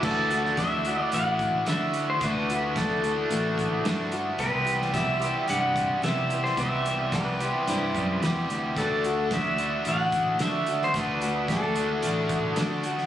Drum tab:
CC |x---------------|----------------|----------------|----------------|
HH |--x-x-x-x-x-x-x-|x-x-x-x-x-x-x-x-|x-x-x-x-x-x-x-x-|x-x-x-x-x-x-x-x-|
SD |---oo-------o---|----o-------o---|---oo-------o--o|----o-------o---|
BD |o---o-----o-----|o---o-----o-----|o---o-----o-----|o---o-----o-----|

CC |----------------|----------------|
HH |x-x-x-x-x-x-x-x-|x-x-x-x-x-x-x-x-|
SD |----o-------o--o|----o-------o--o|
BD |o---o-----o-----|o---o-----o-----|